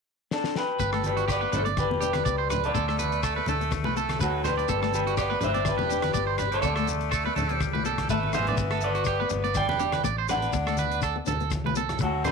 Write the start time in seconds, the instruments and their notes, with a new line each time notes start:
0.31 clean electric guitar D4 A4, snare
0.44 snare
0.56 clean electric guitar G4 B4, snare
0.79 fingered electric bass G1, nylon-string guitar B3, clean electric guitar B4, kick, closed hi-hat, shekere
0.93 nylon-string guitar A3, clean electric guitar A4, cross-stick
1.03 tenor saxophone G3, clean electric guitar G4 B4, closed hi-hat, high conga, shekere
1.17 clean electric guitar F#4, closed hi-hat
1.28 clean electric guitar G4 B4 D5, kick, cross-stick, closed hi-hat, shekere
1.32 tenor saxophone B3
1.41 nylon-string guitar B3, clean electric guitar B4
1.52 fingered electric bass G1, tenor saxophone A3, nylon-string guitar D4, clean electric guitar A4 B4 C5, closed hi-hat, low conga, shekere
1.65 nylon-string guitar B3, clean electric guitar D5, closed hi-hat
1.77 tenor saxophone G3, clean electric guitar G4 B4, kick, cross-stick, closed hi-hat, high conga, shekere
1.91 fingered electric bass E1, nylon-string guitar B3, high conga
2.01 nylon-string guitar D4, clean electric guitar G4, closed hi-hat, shekere
2.13 clean electric guitar B4, cross-stick, closed hi-hat, high conga
2.25 fingered electric bass C#2, nylon-string guitar B3, clean electric guitar D5, kick, closed hi-hat, shekere
2.38 clean electric guitar C5
2.50 nylon-string guitar D4, clean electric guitar B4, cross-stick, closed hi-hat, low conga, shekere
2.64 tenor saxophone A3, clean electric guitar A4 D5, closed hi-hat
2.74 fingered electric bass D2, nylon-string guitar B3, clean electric guitar A4, kick, closed hi-hat, shekere
2.88 nylon-string guitar A3, clean electric guitar A4, cross-stick
2.99 clean electric guitar B4, closed hi-hat, high conga, shekere
3.12 closed hi-hat
3.23 clean electric guitar A4, kick, cross-stick, closed hi-hat, shekere
3.36 nylon-string guitar B3, clean electric guitar B4
3.46 fingered electric bass D2, nylon-string guitar D4, clean electric guitar A4, closed hi-hat, low conga, shekere
3.61 nylon-string guitar B3, closed hi-hat
3.71 kick, cross-stick, closed hi-hat, high conga, shekere
3.84 fingered electric bass C2, nylon-string guitar A3, clean electric guitar B4, high conga
3.96 nylon-string guitar B3, clean electric guitar A4, closed hi-hat, shekere
4.09 cross-stick, closed hi-hat, high conga
4.19 fingered electric bass D2, tenor saxophone F#3, nylon-string guitar A3, clean electric guitar F#4 A4 B4, kick, closed hi-hat, shekere
4.44 tenor saxophone G3, nylon-string guitar D4, clean electric guitar G4 B4 C5, cross-stick, closed hi-hat, low conga, shekere
4.57 clean electric guitar D5, closed hi-hat
4.68 fingered electric bass G1, nylon-string guitar B3, clean electric guitar A4, kick, closed hi-hat, shekere
4.82 nylon-string guitar A3, clean electric guitar A4, cross-stick
4.93 tenor saxophone G3, clean electric guitar G4 B4, closed hi-hat, high conga, shekere
5.07 clean electric guitar F#4, closed hi-hat
5.17 tenor saxophone B3, clean electric guitar G4 B4 D5, kick, cross-stick, closed hi-hat, shekere
5.30 nylon-string guitar B3, clean electric guitar B4
5.41 fingered electric bass G1, tenor saxophone C4, nylon-string guitar D4, clean electric guitar B4 C5 E5, closed hi-hat, low conga, shekere
5.54 nylon-string guitar B3, clean electric guitar D5, closed hi-hat
5.65 tenor saxophone G3, clean electric guitar G4 B4, kick, cross-stick, closed hi-hat, high conga, shekere
5.78 fingered electric bass E1, nylon-string guitar B3, clean electric guitar B4, high conga
5.89 nylon-string guitar D4, clean electric guitar G4, closed hi-hat, shekere
6.02 clean electric guitar B4, cross-stick, closed hi-hat, high conga
6.14 fingered electric bass G1, nylon-string guitar B3, clean electric guitar D5, kick, closed hi-hat, shekere
6.27 clean electric guitar C5
6.38 nylon-string guitar D4, clean electric guitar B4, cross-stick, closed hi-hat, low conga, shekere
6.51 tenor saxophone A3, clean electric guitar A4 D5, closed hi-hat
6.62 fingered electric bass D2, nylon-string guitar B3, clean electric guitar A4, kick, closed hi-hat, shekere
6.76 nylon-string guitar A3, clean electric guitar A4, cross-stick
6.87 closed hi-hat, high conga, shekere
7.01 closed hi-hat
7.11 clean electric guitar A4, kick, cross-stick, closed hi-hat, shekere
7.26 nylon-string guitar B3, clean electric guitar B4
7.36 fingered electric bass D2, nylon-string guitar D4, clean electric guitar A4, closed hi-hat, low conga, shekere
7.49 nylon-string guitar B3, closed hi-hat
7.53 tenor saxophone G3, clean electric guitar C5
7.60 kick, cross-stick, closed hi-hat, high conga, shekere
7.73 fingered electric bass C2, nylon-string guitar A3, clean electric guitar B4, high conga
7.85 nylon-string guitar B3, clean electric guitar A4, closed hi-hat, shekere
7.98 kick, cross-stick, closed hi-hat, high conga
8.09 fingered electric bass G#1, tenor saxophone A3, nylon-string guitar A3, clean electric guitar A4 B4 E5, kick, closed hi-hat, high conga, shekere
8.23 high conga
8.33 tenor saxophone B3, nylon-string guitar D4, clean electric guitar B4 C5 E5, cross-stick, closed hi-hat, low conga, shekere
8.47 clean electric guitar D5, closed hi-hat, low conga
8.57 fingered electric bass G1, nylon-string guitar B3, muted clean electric guitar stroke, kick, closed hi-hat, shekere
8.71 nylon-string guitar A3, clean electric guitar A4, cross-stick
8.81 tenor saxophone B3, clean electric guitar D5, closed hi-hat, high conga, shekere
8.85 clean electric guitar B4
8.95 clean electric guitar F#4, closed hi-hat
9.04 clean electric guitar G4, kick, cross-stick, closed hi-hat, shekere
9.20 nylon-string guitar B3, clean electric guitar B4
9.29 fingered electric bass G1, nylon-string guitar D4, muted clean electric guitar stroke, closed hi-hat, low conga, shekere
9.44 nylon-string guitar B3, clean electric guitar D5, closed hi-hat
9.54 tenor saxophone D4, clean electric guitar D5 G5, kick, cross-stick, closed hi-hat, high conga, shekere
9.67 fingered electric bass E1, nylon-string guitar B3, clean electric guitar B4, high conga
9.79 nylon-string guitar D4, clean electric guitar G4, closed hi-hat, shekere
9.92 clean electric guitar B4, cross-stick, closed hi-hat, high conga
10.04 fingered electric bass A1, nylon-string guitar B3, clean electric guitar D5, kick, closed hi-hat, shekere
10.18 clean electric guitar C5
10.28 tenor saxophone D4, nylon-string guitar D4, clean electric guitar B4 D5 F#5, cross-stick, closed hi-hat, low conga, shekere
10.42 closed hi-hat
10.53 fingered electric bass D2, nylon-string guitar B3, muted clean electric guitar stroke, kick, closed hi-hat, shekere
10.67 nylon-string guitar A3, clean electric guitar A4, cross-stick
10.77 clean electric guitar B4, closed hi-hat, high conga, shekere
10.91 closed hi-hat
11.02 clean electric guitar A4, kick, cross-stick, closed hi-hat, shekere
11.16 nylon-string guitar B3
11.26 fingered electric bass D2, nylon-string guitar D4, clean electric guitar A4, closed hi-hat, low conga, shekere
11.40 nylon-string guitar B3, closed hi-hat
11.50 kick, cross-stick, closed hi-hat, high conga, shekere
11.65 fingered electric bass C2, nylon-string guitar A3, clean electric guitar B4, high conga
11.75 nylon-string guitar B3, clean electric guitar A4, closed hi-hat, shekere
11.89 cross-stick, closed hi-hat, high conga
11.99 fingered electric bass D2, tenor saxophone F#3, nylon-string guitar A3, muted clean electric guitar stroke, kick, closed hi-hat, shekere
12.03 clean electric guitar F#4 A4
12.24 tenor saxophone G3, nylon-string guitar D4, clean electric guitar G4 B4 C5, cross-stick, closed hi-hat, low conga, shekere